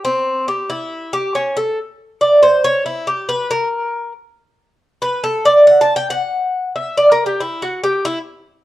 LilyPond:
\new Staff \with { instrumentName = "Cuban tres" } { \time 4/4 \key a \mixolydian \tempo 4 = 139 c'4 g'8 e'4 g'8 cis'8 a'8 | r4 d''8 c''8 cis''8 e'8 g'8 b'8 | bes'4. r2 b'8 | a'8 d''8 \tuplet 3/2 { fis''8 a''8 g''8 } fis''4. e''8 |
\tuplet 3/2 { d''8 bes'8 g'8 } e'8 fis'8 g'8 e'8 r4 | }